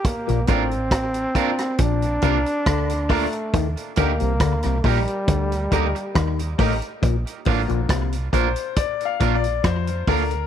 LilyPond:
<<
  \new Staff \with { instrumentName = "Grand piano" } { \time 4/4 \key bes \major \tempo 4 = 69 r8 <d' f' bes'>16 r8. <d' f' bes'>16 <f' bes'>16 r8 <d' f' bes'>16 r8. <d' f' bes'>16 r16 | r8 <ees' g' bes'>16 r8. <ees' g' bes'>16 <g' bes'>16 r8 <ees' g' bes'>16 r8. <ees' g' bes'>16 r16 | r8 <d f bes>8 r8 c''8 \tuplet 3/2 { d''8 f''8 d''8 } c''8 bes'8 | }
  \new Staff \with { instrumentName = "Clean electric guitar" } { \time 4/4 \key bes \major r8 <bes d' f' bes'>8 r8 <bes d' f' bes'>8 r8 <bes d' f' bes'>8 r8 <bes d' f' bes'>8 | r8 <bes ees' g' bes'>8 r8 <bes ees' g' bes'>8 r8 <bes ees' g' bes'>8 r8 <bes ees' g' bes'>8 | r8 <bes d' f' bes'>8 r8 <bes d' f' bes'>8 r8 <bes d' f' bes'>8 r8 <bes d' f' bes'>8 | }
  \new Staff \with { instrumentName = "Trombone" } { \time 4/4 \key bes \major bes8 c'4. d'4. a8 | r8 bes4 g2 r8 | r1 | }
  \new Staff \with { instrumentName = "Clav" } { \clef bass \time 4/4 \key bes \major r16 bes,16 a,8 r4 bes,8 c16 r16 d8 r8 | ees16 r16 d16 c16 d16 c16 bes,16 r16 d8 d16 r16 ees8 a,16 r16 | bes,16 r16 a,16 bes,16 c8 bes,16 r8. bes,8 f8 d8 | }
  \new Staff \with { instrumentName = "Fingered electric bass" } { \clef bass \time 4/4 \key bes \major r16 bes,,16 a,,4 r8 bes,,8 c,16 r16 d,8. r16 | ees,16 r16 d,16 c,16 d,16 c,16 bes,,16 r16 d,8 d,16 r16 ees,8 a,,16 r16 | bes,,16 r16 a,,16 bes,,16 c,8 bes,,16 r8. bes,,8 f,8 d,8 | }
  \new DrumStaff \with { instrumentName = "Drums" } \drummode { \time 4/4 <hh bd>16 hh16 <hh bd>16 hh16 <hh bd ss>16 hh16 <hh bd>16 <hh ss>16 <hh bd>16 hh16 <hh bd>16 hh16 <hh bd ss>16 hh16 <hho bd>16 hh16 | <hh bd>16 hh16 <hh bd>16 hh16 <hh bd ss>16 <hh ss>16 <hho bd>16 hh16 <hh bd>16 hh16 <hh bd>16 hh16 <hh bd ss>16 hh16 <hho bd>16 hh16 | <hh bd>16 hh16 <hho bd>16 hh16 <hh bd ss>16 hh16 <hh bd>16 hh16 <hh bd>16 hh16 <hh bd>16 hh16 <hh bd ss>16 hh16 <hho bd>16 hh16 | }
>>